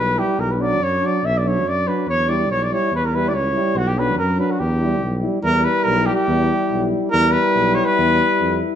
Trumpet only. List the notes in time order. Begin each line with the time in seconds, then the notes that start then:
Already playing: B4
0.18 G4
0.40 A#4
0.51 B4
0.61 D5
0.83 C#5
1.06 D5
1.25 E5
1.38 D5
1.48 C#5
1.68 D5
1.88 B4
2.09 C#5
2.29 D5
2.51 C#5
2.63 D5
2.73 C#5
2.95 B4
3.05 A#4
3.15 B4
3.29 D5
3.35 C#5
3.77 F#4
3.88 G4
3.99 B4
4.18 A#4
4.40 B4
4.51 F#4
4.59 G4
5.44 A#4
5.64 B4
5.84 A#4
6.06 G4
6.15 G4
7.10 A#4
7.31 B4
7.74 C#5
7.85 B4